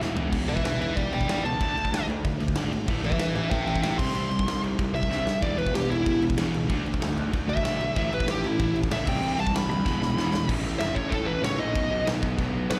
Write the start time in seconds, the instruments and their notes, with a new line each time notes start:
Already playing: distorted electric guitar E3 G#3 B3 E4
0.00 picked electric bass E1, overdriven electric guitar E2 B2 E3, snare
0.15 picked electric bass E1, overdriven electric guitar E2 B2 E3, distorted electric guitar E3 G#3 B3 E4, floor tom
0.33 picked electric bass E1, overdriven electric guitar E2 B2 E3, kick, crash
0.48 picked electric bass E1, overdriven electric guitar E2 B2, lead electric guitar B4 E5, crash
0.57 kick
0.64 picked electric bass E1, overdriven electric guitar E2 B2, lead electric guitar B4 E5, snare, crash
0.79 picked electric bass E1, overdriven electric guitar E2 B2, lead electric guitar B4 E5, crash
0.95 picked electric bass E1, overdriven electric guitar E2 B2, lead electric guitar D5 G5, kick, crash
1.11 picked electric bass E1, overdriven electric guitar E2 B2, lead electric guitar D5 G5, crash
1.21 kick
1.27 picked electric bass E1, overdriven electric guitar E2 B2 E3, lead electric guitar D5 G5, snare, crash
1.43 picked electric bass C#2, overdriven electric guitar E2 B2, lead electric guitar A5, crash
1.59 picked electric bass D2, overdriven electric guitar D3 A3 D4, kick, crash
1.76 picked electric bass D2, overdriven electric guitar D3 A3, crash
1.85 kick
1.92 picked electric bass D2, overdriven electric guitar D3 A3, snare, crash
2.07 picked electric bass D2, overdriven electric guitar D3 A3, crash
2.23 picked electric bass D2, overdriven electric guitar D3 A3, kick, crash
2.40 picked electric bass D2, overdriven electric guitar D3 A3, crash
2.48 kick
2.55 picked electric bass G#1, overdriven electric guitar D3 A3 D4, snare, crash
2.71 overdriven electric guitar D3 A3, crash
2.87 picked electric bass A1, overdriven electric guitar A2 E3 A3, kick, crash
3.04 picked electric bass A1, overdriven electric guitar A2 E3, lead electric guitar B4 E5, crash
3.12 kick
3.19 picked electric bass A1, overdriven electric guitar A2 E3, lead electric guitar B4 E5, snare, crash
3.35 picked electric bass A1, overdriven electric guitar A2 E3, lead electric guitar B4 E5, crash
3.50 picked electric bass A1, overdriven electric guitar A2 E3, lead electric guitar E5 G5, kick, crash
3.66 picked electric bass A1, overdriven electric guitar A2 E3, lead electric guitar E5 G5, crash
3.76 kick
3.82 picked electric bass A1, overdriven electric guitar A2 E3 A3, lead electric guitar E5 G5, snare, crash
3.98 picked electric bass C2, overdriven electric guitar C3 G3 C4, lead electric guitar C6, kick, crash
4.14 picked electric bass C2, overdriven electric guitar C3 G3 C4, crash
4.30 picked electric bass C2, overdriven electric guitar C3 G3, crash
4.39 kick
4.46 picked electric bass C2, overdriven electric guitar C3 G3, snare, crash
4.62 picked electric bass C2, overdriven electric guitar C3 G3, crash
4.78 picked electric bass C2, overdriven electric guitar C3 G3, kick, crash
4.93 picked electric bass C2, overdriven electric guitar C3 G3, lead electric guitar E5, crash
5.03 kick
5.10 picked electric bass C2, overdriven electric guitar C3 G3 C4, snare
5.27 overdriven electric guitar C3 G3, snare
5.40 picked electric bass E1, overdriven electric guitar E2 B2 E3, distorted electric guitar E3 G#3 B3 E4, lead electric guitar D5, kick, crash
5.58 picked electric bass E1, overdriven electric guitar E2 B2, lead electric guitar B4, crash
5.67 kick
5.74 picked electric bass E1, overdriven electric guitar E2 B2, lead electric guitar G4, snare, crash
5.89 picked electric bass E1, overdriven electric guitar E2 B2, lead electric guitar E4, crash
6.06 picked electric bass E1, overdriven electric guitar E2 B2, kick, crash
6.21 picked electric bass E1, overdriven electric guitar E2 B2, crash
6.30 kick
6.37 picked electric bass E1, overdriven electric guitar E2 B2 E3, snare, crash
6.53 picked electric bass C#2, overdriven electric guitar E2 B2, crash
6.67 picked electric bass D2, distorted electric guitar D3 A3 D4 F#4, overdriven electric guitar D3 A3 D4, kick, crash
6.85 picked electric bass D2, overdriven electric guitar D3 A3, crash
6.94 kick
7.00 picked electric bass D2, overdriven electric guitar D3 A3, snare, crash
7.16 picked electric bass D2, overdriven electric guitar D3 A3, crash
7.32 picked electric bass D2, overdriven electric guitar D3 A3, kick, crash
7.47 picked electric bass D2, overdriven electric guitar D3 A3, lead electric guitar E5, crash
7.57 kick
7.63 picked electric bass B1, overdriven electric guitar D3 A3 D4, snare, crash
7.80 overdriven electric guitar D3 A3, crash
7.95 picked electric bass A1, distorted electric guitar A2 E3 A3 C#4 E4, overdriven electric guitar A2 E3 A3, lead electric guitar E5, kick, crash
8.11 picked electric bass A1, overdriven electric guitar A2 E3, lead electric guitar B4, crash
8.20 kick
8.26 picked electric bass A1, overdriven electric guitar A2 E3, snare, crash
8.30 lead electric guitar G4
8.44 picked electric bass A1, overdriven electric guitar A2 E3, lead electric guitar E4, crash
8.59 picked electric bass A1, overdriven electric guitar A2 E3, kick, crash
8.74 picked electric bass A1, overdriven electric guitar A2 E3, crash
8.84 kick
8.90 picked electric bass C#2, overdriven electric guitar A2 E3 A3, lead electric guitar E5, snare, crash
9.05 picked electric bass C2, overdriven electric guitar C3 G3 C4, distorted electric guitar C3 E3 G3 C4, lead electric guitar G5, kick, crash
9.10 distorted electric guitar E4
9.20 picked electric bass C2, overdriven electric guitar C3 G3 C4, crash
9.38 picked electric bass C2, overdriven electric guitar C3 G3, lead electric guitar A5, crash
9.47 kick
9.53 picked electric bass C2, overdriven electric guitar C3 G3, lead electric guitar B5, snare, crash
9.69 picked electric bass D2, overdriven electric guitar C3 G3, lead electric guitar B5, crash
9.84 picked electric bass E1, overdriven electric guitar E2 B2 E3, distorted electric guitar E3 G#3 B3 E4, kick, snare
10.00 picked electric bass E1, overdriven electric guitar E2 B2, snare
10.17 picked electric bass E1, overdriven electric guitar E2 B2 E3, snare
10.33 overdriven electric guitar E2 B2, snare
10.47 picked electric bass A1, distorted electric guitar A2 E3 A3 C#4 E4, overdriven electric guitar A2 E3 A3, kick, crash
10.63 picked electric bass A1
10.79 picked electric bass F#1, overdriven electric guitar A2 E3 A3, lead electric guitar E5, snare, crash
10.95 picked electric bass A1, overdriven electric guitar A2 E3 A3, lead electric guitar C#5, kick
11.10 overdriven electric guitar A2 E3 A3, picked electric bass A2, lead electric guitar A4, kick, crash
11.26 picked electric bass A1, lead electric guitar B4
11.41 picked electric bass C#2, overdriven electric guitar A2 E3 A3, lead electric guitar C#5, snare, crash
11.58 picked electric bass A#1, overdriven electric guitar A2 E3 A3, distorted electric guitar A2 E3 A3 C#4 E4, lead electric guitar D#5
11.72 picked electric bass B1, distorted electric guitar B2 D#3 F#3 B3, overdriven electric guitar B2 F#3 B3, kick, crash
11.77 distorted electric guitar D#4
11.91 picked electric bass B1
12.06 picked electric bass B1, overdriven electric guitar B2 F#3 B3, snare, crash
12.22 overdriven electric guitar B2 F#3 B3, kick
12.38 picked electric bass B1, overdriven electric guitar B2 F#3 B3, kick, crash
12.54 picked electric bass B1
12.69 picked electric bass B1, overdriven electric guitar B2 F#3 B3, lead electric guitar B4, snare, crash